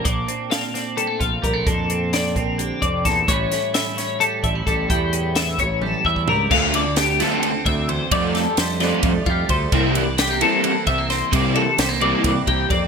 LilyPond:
<<
  \new Staff \with { instrumentName = "Clean electric guitar" } { \time 7/8 \key d \minor \tempo 4 = 130 d''4 f''8 d''8 a'8 f''8 bes'8 | a'4 d''8 bes'8 g'8 d''8 a'8 | cis''4 e''8 cis''8 a'8 e''8 a'8 | g'4 e''8 cis''8 a'8 e''8 bes'8 |
f''8 d''8 g'8 a'4 e''8 c''8 | d''8 a'8 c''8 d''4 f'8 c''8 | e''8 d''8 g'8 a'4 e''8 c''8 | d''8 a'8 c''8 d''4 g'8 d''8 | }
  \new Staff \with { instrumentName = "Overdriven electric guitar" } { \time 7/8 \key d \minor r2. r8 | r2. r8 | r2. r8 | r2. r8 |
<d a d' f'>8 r4 <d a d' f'>8 r4. | <f a c' f'>8 r4 <f a c' f'>8 r4. | <c g bes e'>8 r4 <c g bes e'>8 r4. | <c g bes e'>8 r4 <c g bes e'>8 r4. | }
  \new Staff \with { instrumentName = "Clean electric guitar" } { \time 7/8 \key d \minor << { d'8 c'8 d'8 c'8 g16 a16 f'8 g16 a16 | d'8 c'8 d'8 c'2 | <e g cis' e'>8 cis'8 e'8 cis'8 g8 d'16 e'16 g8 | e'8 cis'8 e'8 cis'8 g8 e'8 g8 |
r4 a8 a16 c'4.~ c'16 | <f g a d'>4 g8 a4 g8 a8 | r4 g16 bes16 c'4 g16 bes16 c'8 | r4 g16 bes16 c'4 bes8 c'8 | } \\ { bes,2.~ bes,8 | bes,2 d8 c8 bes,8 | a,2.~ a,8 | a,2.~ a,8 |
d,8 d2 d,8 e,8 | f,8 f4. f4. | c8 e4. e4. | c8 e4. e4. | } >> }
  \new Staff \with { instrumentName = "Fingered electric bass" } { \clef bass \time 7/8 \key d \minor bes,,8 r2 bes,,8 bes,,8 | f,4. bes,,4 f,8 e,8 | a,,8 r2 a,,8 a,,8 | e,4. a,,4 e,8 cis,8 |
d,2 r8 d,4 | f,4 f,4 f,8 f,8 d,8 | c,2 r8 c,4 | c4 c,4 c,8 c,8 f,8 | }
  \new DrumStaff \with { instrumentName = "Drums" } \drummode { \time 7/8 <hh bd>8 hh8 <hh sn>8 <hh sn>8 hh8 <hh bd>8 <hh bd>8 | <hh bd>8 hh8 <hh sn>8 <hh bd>8 hh8 <hh bd>8 <hh bd sn>8 | <hh bd>8 <hh sn>8 <hh sn>8 <hh sn>8 hh8 <hh bd>8 <hh bd>8 | <hh bd>8 hh8 <hh sn>8 <hh bd>8 tommh8 bd16 bd16 tomfh8 |
<cymc bd>8 cymr8 <cymr sn>8 <cymr sn>8 cymr8 <bd cymr>8 cymr8 | <bd cymr>8 <cymr sn>8 <cymr sn>8 <cymr sn>8 <bd cymr>8 <bd cymr>8 <bd cymr>8 | <bd cymr>8 cymr8 <cymr sn>8 cymr8 cymr8 <bd cymr>8 <cymr sn>8 | <bd cymr>8 cymr8 <cymr sn>8 cymr8 <bd cymr>8 <bd cymr>8 <bd cymr>8 | }
>>